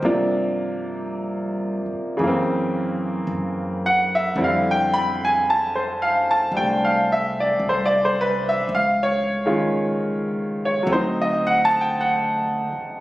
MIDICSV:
0, 0, Header, 1, 4, 480
1, 0, Start_track
1, 0, Tempo, 1081081
1, 15, Time_signature, 4, 2, 24, 8
1, 3374, Tempo, 1092896
1, 5748, End_track
2, 0, Start_track
2, 0, Title_t, "Grand piano"
2, 0, Program_c, 0, 0
2, 0, Control_c, 0, 64, 127
2, 18, Note_on_c, 0, 48, 60
2, 21, Control_c, 0, 64, 0
2, 22, Note_on_c, 0, 58, 56
2, 23, Note_on_c, 0, 53, 53
2, 24, Note_on_c, 0, 62, 69
2, 102, Control_c, 0, 64, 127
2, 963, Note_on_c, 0, 49, 62
2, 976, Note_on_c, 0, 52, 58
2, 977, Note_off_c, 0, 48, 0
2, 979, Note_off_c, 0, 53, 0
2, 979, Note_off_c, 0, 58, 0
2, 980, Note_off_c, 0, 62, 0
2, 981, Control_c, 0, 64, 0
2, 994, Note_on_c, 0, 58, 55
2, 1009, Note_on_c, 0, 60, 66
2, 1056, Control_c, 0, 64, 127
2, 1714, Note_on_c, 0, 78, 89
2, 1821, Note_off_c, 0, 78, 0
2, 1843, Note_on_c, 0, 76, 86
2, 1924, Note_off_c, 0, 76, 0
2, 1929, Note_off_c, 0, 49, 0
2, 1936, Note_off_c, 0, 52, 0
2, 1936, Note_off_c, 0, 60, 0
2, 1937, Note_on_c, 0, 50, 64
2, 1938, Note_on_c, 0, 55, 54
2, 1941, Control_c, 0, 64, 0
2, 1943, Note_on_c, 0, 60, 55
2, 1943, Note_on_c, 0, 64, 58
2, 1944, Note_off_c, 0, 58, 0
2, 1971, Note_on_c, 0, 77, 80
2, 2030, Control_c, 0, 64, 127
2, 2091, Note_on_c, 0, 79, 94
2, 2114, Note_off_c, 0, 77, 0
2, 2191, Note_on_c, 0, 83, 104
2, 2256, Note_off_c, 0, 79, 0
2, 2299, Note_off_c, 0, 83, 0
2, 2329, Note_on_c, 0, 80, 91
2, 2407, Note_off_c, 0, 80, 0
2, 2442, Note_on_c, 0, 81, 91
2, 2555, Note_on_c, 0, 72, 62
2, 2589, Note_off_c, 0, 81, 0
2, 2673, Note_on_c, 0, 77, 84
2, 2727, Note_off_c, 0, 72, 0
2, 2780, Note_off_c, 0, 77, 0
2, 2800, Note_on_c, 0, 81, 94
2, 2882, Note_off_c, 0, 81, 0
2, 2891, Note_off_c, 0, 55, 0
2, 2898, Note_on_c, 0, 55, 45
2, 2905, Note_on_c, 0, 57, 41
2, 2911, Note_on_c, 0, 62, 47
2, 2915, Note_on_c, 0, 79, 96
2, 3039, Note_on_c, 0, 77, 82
2, 3066, Note_off_c, 0, 79, 0
2, 3162, Note_on_c, 0, 76, 94
2, 3210, Note_off_c, 0, 77, 0
2, 3266, Note_off_c, 0, 76, 0
2, 3287, Note_on_c, 0, 74, 76
2, 3366, Note_off_c, 0, 74, 0
2, 3414, Note_on_c, 0, 72, 73
2, 3486, Note_on_c, 0, 74, 86
2, 3502, Note_off_c, 0, 72, 0
2, 3534, Note_off_c, 0, 74, 0
2, 3572, Note_on_c, 0, 72, 73
2, 3642, Note_on_c, 0, 71, 91
2, 3718, Note_off_c, 0, 72, 0
2, 3744, Note_off_c, 0, 71, 0
2, 3764, Note_on_c, 0, 76, 90
2, 3843, Note_off_c, 0, 76, 0
2, 3853, Note_off_c, 0, 50, 0
2, 3854, Note_off_c, 0, 55, 0
2, 3856, Note_off_c, 0, 60, 0
2, 3856, Note_off_c, 0, 64, 0
2, 3858, Note_off_c, 0, 57, 0
2, 3858, Control_c, 0, 64, 0
2, 3861, Note_off_c, 0, 62, 0
2, 3878, Note_on_c, 0, 77, 88
2, 3927, Control_c, 0, 64, 127
2, 4003, Note_on_c, 0, 73, 92
2, 4025, Note_off_c, 0, 77, 0
2, 4105, Note_off_c, 0, 73, 0
2, 4190, Note_on_c, 0, 51, 53
2, 4191, Note_on_c, 0, 56, 56
2, 4194, Note_on_c, 0, 61, 55
2, 4195, Note_on_c, 0, 65, 63
2, 4716, Note_on_c, 0, 73, 74
2, 4792, Note_on_c, 0, 54, 54
2, 4798, Note_off_c, 0, 73, 0
2, 4808, Note_on_c, 0, 57, 52
2, 4814, Note_off_c, 0, 51, 0
2, 4815, Note_off_c, 0, 56, 0
2, 4816, Note_off_c, 0, 61, 0
2, 4817, Note_off_c, 0, 65, 0
2, 4817, Control_c, 0, 64, 0
2, 4823, Note_on_c, 0, 60, 49
2, 4835, Note_on_c, 0, 72, 72
2, 4840, Note_on_c, 0, 63, 63
2, 4894, Control_c, 0, 64, 127
2, 4962, Note_on_c, 0, 75, 85
2, 4984, Note_off_c, 0, 72, 0
2, 5073, Note_on_c, 0, 78, 99
2, 5096, Note_off_c, 0, 78, 0
2, 5130, Note_off_c, 0, 75, 0
2, 5153, Note_on_c, 0, 81, 114
2, 5224, Note_on_c, 0, 79, 81
2, 5250, Note_off_c, 0, 81, 0
2, 5281, Note_off_c, 0, 79, 0
2, 5310, Note_on_c, 0, 78, 86
2, 5504, Note_off_c, 0, 78, 0
2, 5748, Note_off_c, 0, 54, 0
2, 5748, Note_off_c, 0, 57, 0
2, 5748, Note_off_c, 0, 60, 0
2, 5748, Note_off_c, 0, 63, 0
2, 5748, End_track
3, 0, Start_track
3, 0, Title_t, "Upright bass"
3, 0, Program_c, 1, 32
3, 11, Note_on_c, 1, 43, 81
3, 806, Note_off_c, 1, 43, 0
3, 973, Note_on_c, 1, 42, 70
3, 1436, Note_off_c, 1, 42, 0
3, 1452, Note_on_c, 1, 42, 70
3, 1916, Note_off_c, 1, 42, 0
3, 1934, Note_on_c, 1, 41, 83
3, 2876, Note_off_c, 1, 41, 0
3, 2892, Note_on_c, 1, 36, 81
3, 3357, Note_off_c, 1, 36, 0
3, 3372, Note_on_c, 1, 36, 74
3, 3833, Note_off_c, 1, 36, 0
3, 3852, Note_on_c, 1, 37, 86
3, 4792, Note_off_c, 1, 37, 0
3, 4810, Note_on_c, 1, 38, 90
3, 5606, Note_off_c, 1, 38, 0
3, 5748, End_track
4, 0, Start_track
4, 0, Title_t, "Muted upright bass strokes"
4, 825, Note_on_c, 9, 29, 36
4, 870, Note_off_c, 9, 29, 0
4, 5626, Note_on_c, 9, 29, 37
4, 5670, Note_off_c, 9, 29, 0
4, 5748, End_track
0, 0, End_of_file